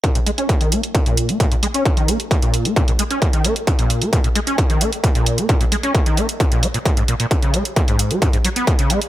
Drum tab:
HH |xxxxxxxxxxxxxxxx|xxxxxxxxxxxxxxxx|xxxxxxxxxxxxxxxx|xxxxxxxxxxxxxxxx|
BD |o---o---o---o---|o---o---o---o---|o---o---o---o---|o---o---o---o---|

HH |xxxxxxxxxxxxxxxx|
BD |o---o---o---o---|